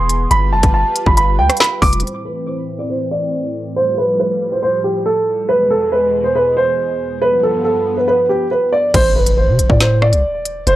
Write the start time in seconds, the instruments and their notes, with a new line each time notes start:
Already playing: 808-style bass E1, analog synth pad E3 B3 G#4, grand piano C6
0.09 closed hi-hat
0.31 808-style bass G1, analog synth pad G3 F4 B4, grand piano B5, closed hi-hat
0.52 808-style bass F1, grand piano A5
0.63 808-style bass G1, kick, closed hi-hat
0.74 grand piano A5
0.96 closed hi-hat
1.06 808-style bass G1, grand piano B5, kick
1.17 grand piano B5, closed hi-hat
1.39 808-style bass D2, grand piano G5
1.50 cross-stick, closed hi-hat
1.57 grand piano B5, snare, closed hi-hat
1.64 closed hi-hat
1.82 808-style bass F1, grand piano D6, kick, open hi-hat
1.93 closed hi-hat
2.00 analog synth pad A2 E3 C4, grand piano C5, closed hi-hat
2.07 closed hi-hat
2.25 grand piano B4
2.47 grand piano C5
2.79 grand piano D5
2.90 grand piano C5
3.11 grand piano D5
3.76 analog synth pad F3 G3, grand piano C5
3.98 grand piano B4
4.20 grand piano B4
4.52 grand piano C5
4.63 grand piano C5
4.84 grand piano G4
5.06 grand piano A4
5.49 analog synth pad E2 B2 G#3, grand piano B4
5.70 grand piano A4
5.92 grand piano B4
6.24 grand piano C5
6.35 grand piano B4
6.57 grand piano C5
7.22 analog synth pad G2 F3 B3, grand piano B4
7.43 grand piano A4
7.65 grand piano A4
7.97 grand piano B4
8.08 grand piano B4
8.29 grand piano G4
8.51 grand piano B4
8.73 grand piano D5
8.94 808-style bass A1, grand piano C5, kick, closed hi-hat, crash, impact
9.16 grand piano B4
9.26 closed hi-hat
9.37 grand piano C5
9.48 808-style bass C3
9.59 808-style bass A1, closed hi-hat
9.69 808-style bass A2, grand piano D5, kick
9.80 grand piano C5, snare, closed hi-hat
10.02 grand piano D5, cross-stick
10.13 808-style bass C2, closed hi-hat
10.45 closed hi-hat
10.67 808-style bass F1, grand piano C5, closed hi-hat